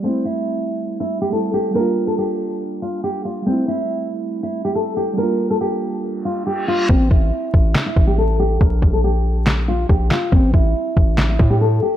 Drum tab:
CP |--------|--------|--------|--------|
SD |--------|--------|--------|--------|
BD |--------|--------|--------|--------|

CP |----x---|----x--x|----x---|
SD |----o---|----o--o|----o---|
BD |oo-o-o--|oo----o-|oo-o-o--|